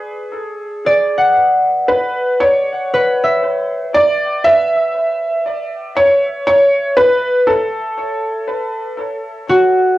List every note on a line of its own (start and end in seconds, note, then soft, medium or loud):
0.00 1.33 G#4 medium
0.86 2.71 D5 medium
1.18 2.78 F#5 soft
1.88 2.42 B4 medium
2.40 3.91 C#5 medium
2.94 4.98 B4 medium
3.24 4.96 E5 soft
3.94 4.47 D5 loud
4.44 6.01 E5 loud
5.97 6.46 C#5 medium
6.47 6.94 C#5 medium
6.97 7.49 B4 medium
7.47 9.44 A4 medium
9.49 9.98 F#4 medium